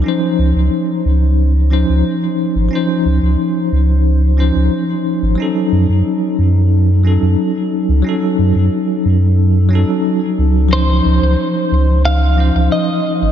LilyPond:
<<
  \new Staff \with { instrumentName = "Clean electric guitar" } { \time 4/4 \key des \major \tempo 4 = 90 r1 | r1 | r1 | r1 |
c''2 f''4 ees''4 | }
  \new Staff \with { instrumentName = "Tine electric piano" } { \time 4/4 \key des \major <f des' ees' c''>2~ <f des' ees' c''>8 <f des' ees' c''>16 r4 r16 | <f des' ees' c''>2~ <f des' ees' c''>8 <f des' ees' c''>16 r4 r16 | <ges des' ees' a'>2~ <ges des' ees' a'>8 <ges des' ees' a'>16 r4 r16 | <ges des' ees' a'>2~ <ges des' ees' a'>8 <ges des' ees' a'>4. |
<f des' ees' c''>2~ <f des' ees' c''>8 <f des' ees' c''>16 r4 r16 | }
  \new Staff \with { instrumentName = "Sub bass" } { \clef bass \time 4/4 \key des \major r8 des,16 des,16 r8 des,4~ des,16 des,16 r8. aes,,16 | r8 des,16 des,16 r8 des,4~ des,16 des,16 r8. aes,,16 | r8 ges,16 ges,16 r8 ges,4~ ges,16 ges,16 r8. des,16 | r8 ges,16 ges,16 r8 ges,4~ ges,16 r8. des,8~ |
des,8 des,16 des,16 r8 des,4~ des,16 des,16 r8. aes,,16 | }
>>